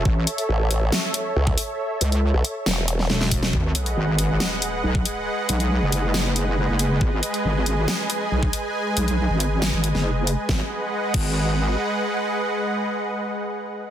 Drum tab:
CC |----------------|----------------|----------------|----------------|
HH |--xx--x---x---o-|--xx--x---x---o-|--xx--x---x---x-|--xx--x---x---x-|
SD |--------o-------|--------o--ooo-o|--------o-------|--------o-------|
BD |o------------o--|--------------o-|o------------o--|----------------|

CC |----------------|----------------|------x---------|----------------|
HH |--xx--x---x---x-|--xx--x---x---x-|----------------|----------------|
SD |--------o-------|--------o--o----|o---------------|----------------|
BD |o------------o--|----------------|o-----o---------|----------------|